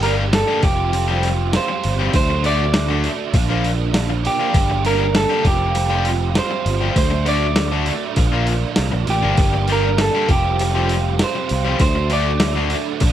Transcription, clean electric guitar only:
0, 0, Header, 1, 2, 480
1, 0, Start_track
1, 0, Tempo, 603622
1, 1701, Time_signature, 4, 2, 24, 8
1, 10436, End_track
2, 0, Start_track
2, 0, Title_t, "Clean electric guitar"
2, 0, Program_c, 0, 27
2, 21, Note_on_c, 0, 70, 82
2, 87, Note_off_c, 0, 70, 0
2, 277, Note_on_c, 0, 69, 77
2, 503, Note_off_c, 0, 69, 0
2, 507, Note_on_c, 0, 67, 79
2, 1241, Note_off_c, 0, 67, 0
2, 1244, Note_on_c, 0, 72, 79
2, 1706, Note_off_c, 0, 72, 0
2, 1716, Note_on_c, 0, 72, 89
2, 1955, Note_off_c, 0, 72, 0
2, 1958, Note_on_c, 0, 74, 102
2, 3389, Note_off_c, 0, 74, 0
2, 3393, Note_on_c, 0, 67, 81
2, 3865, Note_off_c, 0, 67, 0
2, 3868, Note_on_c, 0, 70, 85
2, 4101, Note_off_c, 0, 70, 0
2, 4104, Note_on_c, 0, 69, 84
2, 4323, Note_off_c, 0, 69, 0
2, 4350, Note_on_c, 0, 67, 84
2, 5075, Note_off_c, 0, 67, 0
2, 5078, Note_on_c, 0, 72, 81
2, 5539, Note_off_c, 0, 72, 0
2, 5549, Note_on_c, 0, 72, 84
2, 5789, Note_off_c, 0, 72, 0
2, 5792, Note_on_c, 0, 74, 93
2, 7233, Note_off_c, 0, 74, 0
2, 7236, Note_on_c, 0, 67, 75
2, 7722, Note_off_c, 0, 67, 0
2, 7730, Note_on_c, 0, 70, 81
2, 7959, Note_off_c, 0, 70, 0
2, 7962, Note_on_c, 0, 69, 72
2, 8194, Note_off_c, 0, 69, 0
2, 8197, Note_on_c, 0, 67, 77
2, 8932, Note_off_c, 0, 67, 0
2, 8938, Note_on_c, 0, 72, 74
2, 9385, Note_off_c, 0, 72, 0
2, 9395, Note_on_c, 0, 72, 89
2, 9637, Note_off_c, 0, 72, 0
2, 9646, Note_on_c, 0, 74, 90
2, 10436, Note_off_c, 0, 74, 0
2, 10436, End_track
0, 0, End_of_file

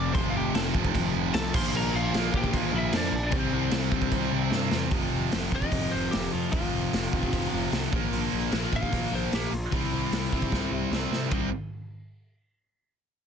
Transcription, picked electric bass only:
0, 0, Header, 1, 2, 480
1, 0, Start_track
1, 0, Tempo, 399202
1, 173, Time_signature, 4, 2, 24, 8
1, 15953, End_track
2, 0, Start_track
2, 0, Title_t, "Picked electric bass"
2, 0, Program_c, 0, 34
2, 0, Note_on_c, 0, 29, 89
2, 128, Note_off_c, 0, 29, 0
2, 177, Note_on_c, 0, 29, 102
2, 368, Note_off_c, 0, 29, 0
2, 418, Note_on_c, 0, 29, 98
2, 609, Note_off_c, 0, 29, 0
2, 645, Note_on_c, 0, 29, 102
2, 841, Note_off_c, 0, 29, 0
2, 899, Note_on_c, 0, 29, 87
2, 1089, Note_off_c, 0, 29, 0
2, 1142, Note_on_c, 0, 29, 96
2, 1331, Note_off_c, 0, 29, 0
2, 1365, Note_on_c, 0, 29, 96
2, 1561, Note_off_c, 0, 29, 0
2, 1612, Note_on_c, 0, 36, 95
2, 1805, Note_off_c, 0, 36, 0
2, 1853, Note_on_c, 0, 34, 96
2, 2046, Note_off_c, 0, 34, 0
2, 2082, Note_on_c, 0, 34, 105
2, 2279, Note_off_c, 0, 34, 0
2, 2328, Note_on_c, 0, 34, 98
2, 2522, Note_off_c, 0, 34, 0
2, 2563, Note_on_c, 0, 34, 95
2, 2759, Note_off_c, 0, 34, 0
2, 2806, Note_on_c, 0, 34, 87
2, 3000, Note_off_c, 0, 34, 0
2, 3053, Note_on_c, 0, 34, 97
2, 3244, Note_off_c, 0, 34, 0
2, 3275, Note_on_c, 0, 34, 97
2, 3473, Note_off_c, 0, 34, 0
2, 3519, Note_on_c, 0, 41, 96
2, 3716, Note_off_c, 0, 41, 0
2, 3748, Note_on_c, 0, 34, 97
2, 3949, Note_off_c, 0, 34, 0
2, 4003, Note_on_c, 0, 36, 105
2, 4197, Note_off_c, 0, 36, 0
2, 4241, Note_on_c, 0, 36, 98
2, 4436, Note_off_c, 0, 36, 0
2, 4471, Note_on_c, 0, 36, 95
2, 4670, Note_off_c, 0, 36, 0
2, 4713, Note_on_c, 0, 36, 84
2, 4911, Note_off_c, 0, 36, 0
2, 4951, Note_on_c, 0, 36, 88
2, 5149, Note_off_c, 0, 36, 0
2, 5196, Note_on_c, 0, 36, 90
2, 5392, Note_off_c, 0, 36, 0
2, 5423, Note_on_c, 0, 43, 96
2, 5624, Note_off_c, 0, 43, 0
2, 5681, Note_on_c, 0, 40, 95
2, 5875, Note_off_c, 0, 40, 0
2, 5907, Note_on_c, 0, 29, 91
2, 6074, Note_off_c, 0, 29, 0
2, 6167, Note_on_c, 0, 29, 87
2, 6327, Note_off_c, 0, 29, 0
2, 6409, Note_on_c, 0, 29, 85
2, 6569, Note_off_c, 0, 29, 0
2, 6635, Note_on_c, 0, 29, 81
2, 6800, Note_off_c, 0, 29, 0
2, 6877, Note_on_c, 0, 29, 91
2, 7041, Note_off_c, 0, 29, 0
2, 7141, Note_on_c, 0, 29, 86
2, 7297, Note_off_c, 0, 29, 0
2, 7386, Note_on_c, 0, 29, 93
2, 7540, Note_off_c, 0, 29, 0
2, 7623, Note_on_c, 0, 41, 89
2, 7778, Note_off_c, 0, 41, 0
2, 7852, Note_on_c, 0, 29, 85
2, 8011, Note_off_c, 0, 29, 0
2, 8096, Note_on_c, 0, 29, 88
2, 8253, Note_off_c, 0, 29, 0
2, 8332, Note_on_c, 0, 29, 83
2, 8491, Note_off_c, 0, 29, 0
2, 8575, Note_on_c, 0, 29, 82
2, 8733, Note_off_c, 0, 29, 0
2, 8813, Note_on_c, 0, 29, 87
2, 8971, Note_off_c, 0, 29, 0
2, 9053, Note_on_c, 0, 29, 89
2, 9211, Note_off_c, 0, 29, 0
2, 9289, Note_on_c, 0, 36, 91
2, 9449, Note_off_c, 0, 36, 0
2, 9528, Note_on_c, 0, 34, 82
2, 9688, Note_off_c, 0, 34, 0
2, 9774, Note_on_c, 0, 34, 94
2, 9932, Note_off_c, 0, 34, 0
2, 10016, Note_on_c, 0, 34, 94
2, 10173, Note_off_c, 0, 34, 0
2, 10249, Note_on_c, 0, 34, 84
2, 10409, Note_off_c, 0, 34, 0
2, 10494, Note_on_c, 0, 34, 80
2, 10652, Note_off_c, 0, 34, 0
2, 10733, Note_on_c, 0, 34, 81
2, 10892, Note_off_c, 0, 34, 0
2, 10970, Note_on_c, 0, 34, 81
2, 11130, Note_off_c, 0, 34, 0
2, 11207, Note_on_c, 0, 34, 92
2, 11368, Note_off_c, 0, 34, 0
2, 11451, Note_on_c, 0, 34, 84
2, 11611, Note_off_c, 0, 34, 0
2, 11691, Note_on_c, 0, 36, 93
2, 11851, Note_off_c, 0, 36, 0
2, 11929, Note_on_c, 0, 36, 90
2, 12090, Note_off_c, 0, 36, 0
2, 12171, Note_on_c, 0, 36, 84
2, 12331, Note_off_c, 0, 36, 0
2, 12413, Note_on_c, 0, 36, 74
2, 12573, Note_off_c, 0, 36, 0
2, 12650, Note_on_c, 0, 36, 90
2, 12811, Note_off_c, 0, 36, 0
2, 12878, Note_on_c, 0, 36, 85
2, 13043, Note_off_c, 0, 36, 0
2, 13120, Note_on_c, 0, 36, 92
2, 13285, Note_off_c, 0, 36, 0
2, 13360, Note_on_c, 0, 48, 78
2, 13525, Note_off_c, 0, 48, 0
2, 13612, Note_on_c, 0, 36, 82
2, 13834, Note_off_c, 0, 36, 0
2, 15953, End_track
0, 0, End_of_file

